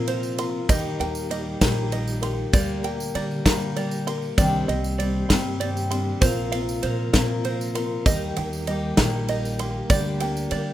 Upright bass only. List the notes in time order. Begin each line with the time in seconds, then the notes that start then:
Already playing: A#2
0.69 D#2
1.00 D#2
1.62 A#1
2.53 D2
3.15 D3
3.45 D3
4.38 C2
4.68 C2
5.30 G2
6.22 A#1
6.84 A#2
7.14 A#2
8.06 D#2
8.37 D#2
8.98 A#1
9.90 D2
10.52 D3